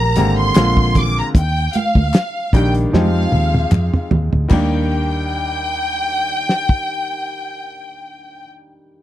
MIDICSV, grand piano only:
0, 0, Header, 1, 2, 480
1, 0, Start_track
1, 0, Key_signature, -3, "major"
1, 0, Tempo, 789474
1, 820, Time_signature, 4, 2, 24, 8
1, 5487, End_track
2, 0, Start_track
2, 0, Title_t, "Grand piano"
2, 0, Program_c, 0, 0
2, 0, Control_c, 0, 64, 127
2, 99, Note_on_c, 0, 50, 75
2, 101, Note_on_c, 0, 56, 66
2, 103, Note_on_c, 0, 58, 69
2, 104, Note_on_c, 0, 60, 66
2, 105, Note_on_c, 0, 67, 77
2, 334, Note_off_c, 0, 50, 0
2, 335, Note_off_c, 0, 56, 0
2, 338, Note_off_c, 0, 58, 0
2, 338, Note_off_c, 0, 60, 0
2, 342, Note_off_c, 0, 67, 0
2, 344, Note_on_c, 0, 50, 82
2, 344, Note_on_c, 0, 56, 72
2, 347, Control_c, 0, 64, 0
2, 347, Note_on_c, 0, 58, 74
2, 347, Note_on_c, 0, 60, 72
2, 348, Note_on_c, 0, 65, 87
2, 442, Control_c, 0, 64, 127
2, 733, Note_off_c, 0, 50, 0
2, 734, Note_off_c, 0, 56, 0
2, 735, Note_off_c, 0, 58, 0
2, 735, Note_off_c, 0, 60, 0
2, 736, Note_off_c, 0, 65, 0
2, 829, Control_c, 0, 64, 0
2, 951, Control_c, 0, 64, 127
2, 1542, Note_on_c, 0, 51, 79
2, 1543, Note_on_c, 0, 55, 68
2, 1544, Note_on_c, 0, 58, 65
2, 1545, Note_on_c, 0, 62, 73
2, 1546, Note_on_c, 0, 67, 87
2, 1781, Note_off_c, 0, 51, 0
2, 1781, Note_off_c, 0, 55, 0
2, 1781, Note_off_c, 0, 67, 0
2, 1782, Note_off_c, 0, 58, 0
2, 1782, Note_off_c, 0, 62, 0
2, 1782, Note_on_c, 0, 53, 74
2, 1786, Note_on_c, 0, 56, 70
2, 1786, Note_on_c, 0, 60, 76
2, 1787, Control_c, 0, 64, 0
2, 1788, Note_on_c, 0, 63, 70
2, 1790, Note_on_c, 0, 67, 83
2, 1885, Control_c, 0, 64, 127
2, 2553, Note_off_c, 0, 53, 0
2, 2555, Note_off_c, 0, 56, 0
2, 2555, Note_off_c, 0, 60, 0
2, 2556, Note_off_c, 0, 63, 0
2, 2556, Note_off_c, 0, 67, 0
2, 2726, Note_on_c, 0, 51, 82
2, 2735, Note_on_c, 0, 55, 77
2, 2742, Note_on_c, 0, 58, 78
2, 2747, Control_c, 0, 64, 0
2, 2749, Note_on_c, 0, 62, 76
2, 2757, Note_on_c, 0, 67, 94
2, 2838, Control_c, 0, 64, 127
2, 5103, Note_off_c, 0, 51, 0
2, 5112, Note_off_c, 0, 55, 0
2, 5118, Note_off_c, 0, 58, 0
2, 5125, Note_off_c, 0, 62, 0
2, 5133, Note_off_c, 0, 67, 0
2, 5487, End_track
0, 0, End_of_file